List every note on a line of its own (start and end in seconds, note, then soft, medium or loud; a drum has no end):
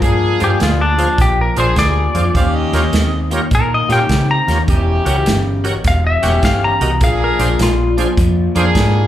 0.01 0.32 G2 medium
0.01 0.36 A#2 medium
0.01 0.37 F3 medium
0.01 0.75 A#3 medium
0.01 0.76 D4 medium
0.01 0.76 G#4 loud
0.01 kick medium
0.01 closed hi-hat medium
0.40 0.56 G2 medium
0.40 0.58 A#2 medium
0.40 0.58 F3 medium
0.40 0.50 F4 medium
0.40 0.50 G#4 medium
0.40 0.51 C5 medium
0.40 0.51 D5 medium
0.40 closed hi-hat medium
0.44 0.61 G4 medium
0.59 1.06 D2 medium
0.59 0.95 A#2 medium
0.59 0.95 G3 medium
0.59 0.81 F4 medium
0.59 snare loud
0.59 closed hi-hat medium
0.81 1.18 D4 medium
0.98 1.16 A#2 medium
0.98 1.16 F3 medium
0.98 1.08 F4 medium
0.98 1.08 G#4 medium
0.98 1.09 C5 medium
0.98 1.09 F5 medium
0.98 closed hi-hat medium
1.18 1.48 A#1 medium
1.18 1.53 A#2 medium
1.18 1.53 F3 medium
1.18 1.39 G4 medium
1.18 kick loud
1.18 snare soft
1.18 closed hi-hat medium
1.41 1.59 A#4 medium
1.56 1.72 A#1 medium
1.56 1.74 A#2 medium
1.56 1.75 F3 medium
1.56 2.07 A#3 medium
1.56 2.07 D4 medium
1.56 1.67 F4 medium
1.56 2.07 G#4 medium
1.56 1.67 G#4 medium
1.56 1.67 C5 medium
1.56 1.77 C5 medium
1.56 1.67 D5 medium
1.56 closed hi-hat medium
1.75 2.07 D2 medium
1.75 2.11 A#2 medium
1.75 2.11 G3 medium
1.75 2.34 D5 medium
1.75 kick medium
1.75 snare loud
1.75 closed hi-hat medium
2.14 2.30 F2 medium
2.14 2.32 A#2 medium
2.14 2.33 F3 medium
2.14 2.25 F4 medium
2.14 2.25 G#4 medium
2.14 2.25 C5 medium
2.14 2.25 D5 medium
2.14 closed hi-hat medium
2.34 2.65 D#2 medium
2.34 2.69 D#3 medium
2.34 2.69 A#3 medium
2.34 3.08 C#4 medium
2.34 3.08 D#4 medium
2.34 3.08 G4 medium
2.34 2.45 C5 medium
2.34 2.43 D5 medium
2.34 2.57 F5 medium
2.34 kick loud
2.34 closed hi-hat medium
2.55 3.40 D#5 medium
2.72 2.89 D#2 medium
2.72 2.91 D#3 medium
2.72 2.91 A#3 medium
2.72 2.83 F4 medium
2.72 2.84 G4 medium
2.72 2.84 A#4 medium
2.72 2.84 C#5 medium
2.72 snare soft
2.72 closed hi-hat medium
2.92 3.38 D#2 medium
2.92 3.27 D#3 medium
2.92 3.28 C4 medium
2.92 snare loud
2.92 closed hi-hat medium
3.31 3.49 D#3 medium
3.31 3.49 A#3 medium
3.31 3.41 F4 medium
3.31 3.42 G4 medium
3.31 3.42 A#4 medium
3.31 3.42 C#5 medium
3.31 closed hi-hat medium
3.51 3.81 A#2 medium
3.51 3.86 D#3 medium
3.51 3.86 A#3 medium
3.51 3.72 A#4 medium
3.51 kick loud
3.51 closed hi-hat medium
3.74 3.92 D#5 medium
3.89 4.05 A#2 medium
3.89 4.08 D#3 medium
3.89 4.08 A#3 medium
3.89 4.40 C#4 medium
3.89 4.40 D#4 medium
3.89 3.99 F4 medium
3.89 4.00 G4 medium
3.89 4.40 G4 medium
3.89 4.00 A#4 medium
3.89 4.00 C#5 medium
3.89 4.29 G5 medium
3.89 snare soft
3.89 closed hi-hat medium
4.09 4.39 C#3 medium
4.09 4.44 D#3 medium
4.09 4.44 C4 medium
4.09 kick medium
4.09 snare loud
4.09 closed hi-hat medium
4.31 4.61 A#5 medium
4.48 4.63 D#2 medium
4.48 4.66 D#3 medium
4.48 4.66 A#3 medium
4.48 4.58 F4 medium
4.48 4.58 G4 medium
4.48 4.58 A#4 medium
4.48 4.59 C#5 medium
4.48 snare soft
4.48 closed hi-hat medium
4.68 4.98 E1 medium
4.68 5.02 E2 medium
4.68 5.03 B2 medium
4.68 5.42 C#4 medium
4.68 5.42 E4 medium
4.68 5.42 G4 medium
4.68 kick loud
4.68 closed hi-hat medium
5.05 5.22 C#2 medium
5.05 5.24 E2 medium
5.05 5.24 B2 medium
5.05 5.16 F#4 medium
5.05 5.16 G4 medium
5.05 5.16 A#4 medium
5.05 5.17 C#5 medium
5.05 closed hi-hat medium
5.26 5.71 G1 medium
5.26 5.61 E2 medium
5.26 5.61 C#3 medium
5.26 snare loud
5.26 closed hi-hat medium
5.64 5.82 E2 medium
5.64 5.82 B2 medium
5.64 5.74 F#4 medium
5.64 5.74 G4 medium
5.64 5.75 A#4 medium
5.64 5.75 C#5 medium
5.64 closed hi-hat medium
5.84 6.14 E1 medium
5.84 6.19 E2 medium
5.84 6.19 B2 medium
5.84 6.05 F5 medium
5.84 kick medium
5.84 snare soft
5.84 closed hi-hat medium
6.07 6.43 E5 medium
6.23 6.39 E1 medium
6.23 6.41 E2 medium
6.23 6.41 B2 medium
6.23 6.73 C#4 medium
6.23 6.74 E4 medium
6.23 6.33 F#4 medium
6.23 6.33 G4 medium
6.23 6.73 G4 medium
6.23 6.33 A#4 medium
6.23 6.33 C#5 medium
6.23 snare soft
6.23 closed hi-hat medium
6.42 6.73 G1 medium
6.42 6.77 E2 medium
6.42 6.78 C#3 medium
6.42 6.63 F5 medium
6.42 kick medium
6.42 snare medium
6.42 closed hi-hat medium
6.64 7.01 A#5 medium
6.81 7.01 C2 medium
6.81 6.99 E2 medium
6.81 6.99 B2 medium
6.81 6.91 F#4 medium
6.81 6.91 G4 medium
6.81 6.91 A#4 medium
6.81 6.92 D#5 medium
6.81 closed hi-hat medium
7.01 7.31 A#1 medium
7.01 7.36 A#2 medium
7.01 7.36 F3 medium
7.01 7.75 A#3 medium
7.01 7.75 D4 medium
7.01 7.75 G#4 medium
7.01 7.21 F5 medium
7.01 kick loud
7.01 closed hi-hat medium
7.24 7.60 A#4 medium
7.39 7.55 A#1 medium
7.39 7.57 A#2 medium
7.39 7.57 F3 medium
7.39 7.49 D4 medium
7.39 7.49 F4 medium
7.39 7.50 G#4 medium
7.39 7.50 C5 medium
7.39 closed hi-hat medium
7.59 8.04 A#1 medium
7.59 7.93 A#2 medium
7.59 7.94 G3 medium
7.59 8.17 F4 medium
7.59 snare loud
7.59 closed hi-hat medium
7.97 8.15 A#2 medium
7.97 8.15 F3 medium
7.97 8.07 D4 medium
7.97 8.07 F4 medium
7.97 8.08 G#4 medium
7.97 8.08 C5 medium
7.97 closed hi-hat medium
8.17 8.47 F2 medium
8.17 8.52 A#2 medium
8.17 8.52 F3 medium
8.17 kick loud
8.17 closed hi-hat medium
8.55 8.71 F2 medium
8.55 8.73 A#2 medium
8.55 9.06 A#3 medium
8.55 8.65 D4 medium
8.55 9.06 D4 medium
8.55 8.66 F4 medium
8.55 9.06 G#4 loud
8.55 8.66 G#4 medium
8.55 8.66 C5 medium
8.55 closed hi-hat medium
8.74 9.05 G#2 medium
8.74 9.07 A#2 medium
8.74 9.07 G3 medium
8.74 kick medium
8.74 snare loud
8.74 closed hi-hat medium